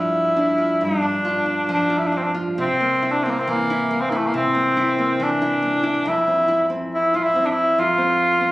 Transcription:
Already playing: G2 F3 A#3 D4 E4 F4
0.37 D4
0.58 F4
0.81 G2 D4
1.02 D4
1.25 F4
1.46 D4
1.69 F3
1.73 D4
1.90 F4
1.98 E4
2.07 D4
2.12 D4
2.17 C4
2.23 D4
2.34 F4
2.58 C3 C4
2.80 A#3
3.02 E4
3.12 D4
3.24 A#3 C4
3.30 A#3
3.39 C4
3.48 E3 A#3
3.70 E4
3.91 A#3
4.01 C4
4.10 A#3 E4
4.16 A3
4.27 A#3
4.34 C3 C4
4.55 A#3
4.77 E4
4.99 A#3
5.20 E3 D4
5.42 E4
5.62 A#3
5.83 E4
6.06 F2 E4
6.27 C4
6.48 E4
6.70 C4
6.95 E4
7.14 E4 F4
7.23 E4
7.36 C4
7.46 D4
7.51 E4
7.78 F2 F4
7.98 C4
8.41 C4

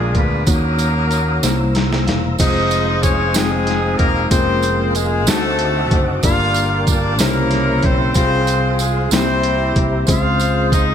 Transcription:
Already playing: A#1 A#2 G#3 D4 F4 G#4 A#4 F5 A#5 D6
0.15 D2 B3 B4, kick, closed hi-hat
0.46 D#2 D#3 A#3 C#4 D#4 F#4 C#5 F#5 D#6, kick, closed hi-hat, tambourine
0.50 A#3 A#4
0.79 closed hi-hat, tambourine
1.11 closed hi-hat, tambourine
1.43 C2 C3 G3 A#3 D#4 C5 A#5 E6, snare, closed hi-hat, tambourine
1.50 E4
1.75 A#5, snare, closed hi-hat
1.93 snare
2.07 E1 F5, snare, closed hi-hat
2.38 F1 G3 C4 D#4 F4 G#4 C5 D#5 F5 D#6, kick, closed hi-hat, crash, tambourine
2.45 G#3
2.71 closed hi-hat, tambourine
3.03 C#4 C#5, kick, closed hi-hat, tambourine
3.34 G#3 C4 D#4 F4 G#4 G5, snare, closed hi-hat, tambourine
3.67 snare, closed hi-hat
3.98 E1 A#3 A#4, kick, closed hi-hat
4.30 F1 G#3 A#3 C4 C#4 F4 G#4 A#4 C5, kick, closed hi-hat, tambourine
4.38 A#4
4.63 closed hi-hat, tambourine
4.95 G#3 G#4, closed hi-hat, tambourine
5.27 D2 D3 A3 C4 D4 D#4 F#4 A4 C5 D#5 F#5 D6, snare, closed hi-hat, tambourine
5.59 closed hi-hat
5.91 F#1, kick, closed hi-hat
6.23 G1 G2 A#3 D4 F4 G4 A#4 D5 F5 G5, kick, closed hi-hat, tambourine
6.54 closed hi-hat, tambourine
6.87 D4 D5, kick, closed hi-hat, tambourine
7.19 C2 C#3 A#3 C#4 D#4 E4 G4 A#4 C5 E5 C6, snare, closed hi-hat, tambourine
7.26 E4
7.51 snare, closed hi-hat
7.83 B1 C4 C5, kick, closed hi-hat
8.14 C2 C3 C4 F4 G4 G#4 C5 F5, kick, closed hi-hat, tambourine
8.24 G#4
8.47 closed hi-hat, tambourine
8.79 G#3 G#4, closed hi-hat, tambourine
9.10 C2 C3 A#3 C4 E4 G4 C5 E5 A#5, snare, closed hi-hat, tambourine
9.43 closed hi-hat
9.76 C2, kick, closed hi-hat
10.06 C#2 C#3 G#3 C4 C#4 F4 G#4 C5 F5 C6, kick, closed hi-hat, tambourine
10.10 F4 G#4 F5
10.39 closed hi-hat, tambourine
10.72 D#4 D#5, kick, closed hi-hat, tambourine

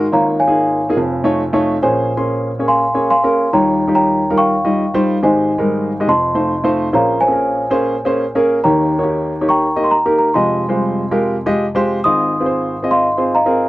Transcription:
Already playing: C6
0.12 G#1 G#2 A#3 D#4 F4 C#5 F5 A#5
0.39 C#5 F5 G#5
0.47 A#3 D#4 F4 G#4
0.89 A#3 D#4 F4 G#4
0.97 F1 F2
1.24 A3 D#4 F4 C#5
1.53 A3 D#4 F4 C#5
1.82 A#1 A#2 A#3 C#4 G#4 C5 C#5 G#5
2.17 A#3 C#4 G#4 C6
2.59 A#3 C#4 G#4 C#5
2.68 F5 G#5 C6
2.94 A#3 C#4 G#4 C#5
3.11 F5 G#5 C6
3.23 A#3 C#4 G#4 A#4
3.53 D#2 D#3 G3 D#4 F4 C#5 G5 A#5
3.87 G3 D#4 F4 G4
3.95 C#5 G5 A#5
4.30 G3 D#4 F4 A#4
4.38 F5 G5 C#6
4.64 G3 D#4 F4 D#5
4.94 G3 D#4 F4 C5
5.23 G#1 G#2 G#3 D#4 G4 C5 D#5 G#5
5.58 G3 G#3 D#4 A#4
6.00 G#3 D#4 G4 D#5
6.08 F1 F2 D#5 A5 C6
6.34 A3 D#4 F4 C5
6.64 A3 D#4 F4 C5
6.93 A#1 A#2 A#3 C#4 G#4 C5 C#5 F5 A#5
7.21 C5 C#5 G#5
7.27 A#3 C#4 G#4 A4
7.33 A#4
7.70 A#3 C#4 G#4 C5
8.05 A#3 C#4 G#4 C5
8.35 A#3 C#4 G#4 A#4
8.64 D#2 D#3 A#3 D#4 G4 C#5 G5 A#5
8.98 A#3 D#4 F#4 C#5
9.04 G4
9.41 A#3 D#4 G4 C#5
9.49 G5 A#5 C#6
9.76 A#3 D#4 G4 D#5
9.84 C6
9.91 A#5
10.05 A#3 D#4 G4 A#4
10.19 A#5
10.34 F1 F2 G#3 F4 G4 D#5 G#5 C6
10.69 G3 G#3 F4 C5
11.11 G#3 F4 G4 A#4
11.46 G#3 F4 G4 D#5
11.75 G#3 F4 G4 C5
12.04 G#1 G#2 C4 F4 G#4 D#5 C6 D#6
12.40 C4 F4 G#4 B4
12.46 C5
12.83 C4 F4 G#4 D#5
12.91 D#5 F5 C6
13.17 C4 F4 G#4 C5
13.35 D#5 F5 A#5
13.46 C4 F4 G#4 A#4

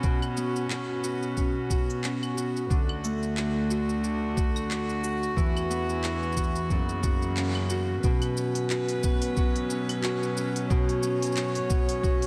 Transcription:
Already playing: B2 B3 C#4 F#4
0.03 B2, kick, shaker
0.22 claves, shaker
0.37 B3, shaker
0.56 shaker
0.70 C#4, clap, shaker
1.03 F#4, shaker
1.23 shaker
1.37 C#4, kick, shaker
1.70 F#4, kick, shaker
1.90 shaker
2.04 C#4, clap, shaker
2.23 claves, shaker
2.37 F#4, shaker
2.57 shaker
2.69 D2 D3 A3 F#4, kick, shaker
2.89 claves
3.04 A3, shaker
3.23 shaker
3.37 D4, clap, shaker
3.71 F#4, shaker
3.89 shaker
4.04 D4, shaker
4.37 F#4, kick, shaker
4.56 claves, shaker
4.70 D4, clap, shaker
4.90 shaker
5.03 F#4, shaker
5.23 shaker
5.36 E2 E3 B3, kick, shaker
5.57 claves, shaker
5.70 B3, shaker
5.89 shaker
6.04 E4, clap, shaker
6.23 shaker
6.32 shaker
6.37 F#4, kick, shaker
6.56 shaker
6.69 F#2 C#3 A#3, kick, shaker
6.89 shaker
7.03 F#4, kick, shaker
7.22 shaker
7.37 C#4, clap, shaker
7.55 claves
7.70 F#4, shaker
8.01 B2 F#3 C#4 B4, kick, shaker
8.22 open hi-hat, claves, shaker
8.37 C#4, shaker
8.55 open hi-hat, shaker
8.70 F#4, clap, shaker
8.88 open hi-hat, shaker
9.03 B3, kick, shaker
9.22 open hi-hat, shaker
9.37 F#4, kick, shaker
9.56 open hi-hat
9.70 C#4, shaker
9.89 open hi-hat, claves, shaker
10.04 F#4, clap, shaker
10.23 shaker
10.37 C#4, shaker
10.56 open hi-hat, shaker
10.70 B2 C#5, kick, shaker
10.89 open hi-hat, shaker
11.03 C#4, shaker
11.22 open hi-hat, shaker
11.26 shaker
11.32 shaker
11.37 F#4, clap, shaker
11.48 shaker
11.55 open hi-hat, shaker
11.70 B3, kick, shaker
11.89 open hi-hat, shaker
12.03 F#4, kick, shaker
12.22 open hi-hat

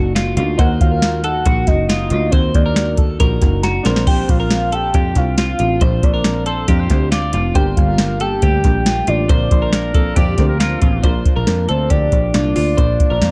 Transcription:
Already playing: F#1 A#3 D#4 F#4
0.15 F4, snare, closed hi-hat
0.36 D2 A#3 D#4 F4 F#4, closed hi-hat
0.58 D#2 D#3 A#3 D#4 F#4 A#4 C5 F#5, kick, closed hi-hat
0.81 D#2 F5, kick, closed hi-hat
0.92 A#4
1.02 D#3 A#3 D#4 F#4, snare, closed hi-hat
1.24 A#3 D#4 A4 F#5, closed hi-hat
1.45 A#1 D#3 A#3 D#4 F#4, kick, closed hi-hat
1.67 F#1 A#3 D#4 F#4 D#5, kick, snare, closed hi-hat
1.88 F4 D#5, snare, closed hi-hat
2.10 D2 A#3 D#4 F4 F#4, closed hi-hat
2.31 D#2 D#3 A#3 D#4 F#4 C5, kick, closed hi-hat
2.54 D#2 D5, kick, closed hi-hat
2.66 A#4
2.75 D#3 A#3 D#4 F#4, snare, closed hi-hat
2.97 A4, kick, closed hi-hat
3.20 A#1 D#3 A#3 D#4 F#4 A#4, kick, closed hi-hat
3.41 F#1 A#3 D#4 F#4, kick, snare, closed hi-hat
3.63 F#4 A#5, snare, closed hi-hat
3.83 A#1 D4 F4 A#4 C5, snare, closed hi-hat
3.88 C4
3.96 snare
4.07 A#2 F3 C4 D4 F4 C5 G5, kick, crash
4.29 A#1 F5, kick, closed hi-hat
4.40 A#4
4.51 F3 C4 D4 F4, snare, closed hi-hat
4.72 A4 G5, closed hi-hat
4.94 F2 A#2 F3 C4 D4 F4 G4, kick, closed hi-hat
5.15 C2 C4 D4 F4 F5, kick, snare, closed hi-hat
5.38 F4 F5, snare, closed hi-hat
5.59 A1 C4 D4 F4, closed hi-hat
5.81 A#1 A#2 F3 C4 D4 F4 C5, kick, closed hi-hat
6.03 A#1 D5, kick, closed hi-hat
6.14 A#4
6.24 F3 C4 D4 F4, snare, closed hi-hat
6.46 A4 C5, closed hi-hat
6.68 F2 A#2 F3 C4 D4 F4 G4 A#4, kick, closed hi-hat
6.80 C5
6.89 D2 C4 D4 F4, kick, snare, closed hi-hat
7.12 F4 D5, snare, closed hi-hat
7.33 F1 C4 D4 F4, closed hi-hat
7.54 G1 G2 D3 G3 A#3 D4 G4 A#4 C5 G5, kick, closed hi-hat
7.77 G1 F5, kick, closed hi-hat
7.88 A#4
7.98 G3 A#3 D4 G4, snare, closed hi-hat
8.20 G3 A#3 D4 G4 A4 G5, closed hi-hat
8.42 D2 G2 D3 G3 A#3 D4 G4, kick, closed hi-hat
8.64 A#1 G3 A#3 D4 G4, kick, snare, closed hi-hat
8.86 F4, snare, closed hi-hat
9.07 A1 G3 A#3 D4 F4 G4 D5, closed hi-hat
9.28 A#1 A#2 D3 F3 A#3 C4 D4 F4 A#4 C5, kick, closed hi-hat
9.51 A#1 C5, kick, closed hi-hat
9.62 A#4
9.72 F3 A#3 C4 F4 A#4, snare, closed hi-hat
9.94 F3 A#3 C4 F4 A4, kick, closed hi-hat
10.16 F2 A#2 D3 F3 A#3 C4 F4 G4 D5, kick, closed hi-hat
10.37 D2 F3 A#3 C4 D4 F4 A#4 C5, kick, snare, closed hi-hat
10.49 A#4
10.60 F4 A#4, snare, closed hi-hat
10.81 A1 F3 A#3 C4 F4, kick, closed hi-hat
11.03 A#1 A#2 F3 A#3 D4 F4 A#4 C5, kick, closed hi-hat
11.26 kick, closed hi-hat
11.36 A#1 A#4
11.47 F2 A#2 F3 A#3 D4 F4 A#4, snare, closed hi-hat
11.68 D2 A#3 F4 A4 C5, closed hi-hat
11.90 D2 F3 A#3 D4 F4 G4 D5, kick, closed hi-hat
12.12 A#1, kick, closed hi-hat
12.34 C2 A#2 F3 A#3 D4 F4 D5, snare, closed hi-hat
12.56 D2 A#3 D4 F4 D5, open hi-hat
12.78 A#1 A#2 F3 A#3 D4 F4 C5, kick, closed hi-hat
13.00 kick, closed hi-hat
13.10 A#1 A#4
13.21 F2 A#2 F3 A#3 D4 F4, snare, closed hi-hat

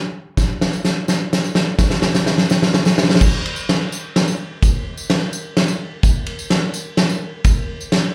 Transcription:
0.37 kick, snare, closed hi-hat, tambourine
0.61 snare, tambourine
0.73 tambourine
0.85 snare, closed hi-hat
1.08 snare, tambourine
1.33 snare, closed hi-hat
1.44 tambourine
1.55 snare
1.79 kick, snare, tambourine
1.90 snare
2.02 snare, tambourine
2.14 snare, tambourine
2.26 snare
2.38 snare, tambourine
2.50 snare, tambourine
2.62 snare
2.74 snare, tambourine
2.85 snare, tambourine
2.98 snare
3.03 snare
3.09 snare, tambourine
3.15 snare
3.21 kick, crash, tambourine
3.45 ride
3.56 tambourine
3.69 snare, ride
3.92 tambourine
4.16 snare, ride
4.28 tambourine
4.63 kick, ride, tambourine
4.75 tambourine
4.97 tambourine
5.10 snare, ride
5.33 tambourine
5.57 snare, ride
5.68 tambourine
6.03 kick, ride, tambourine
6.15 tambourine
6.26 ride
6.39 tambourine
6.50 snare, ride
6.74 tambourine
6.97 snare, ride
7.09 tambourine
7.44 kick, ride, tambourine
7.81 tambourine
7.92 snare, ride

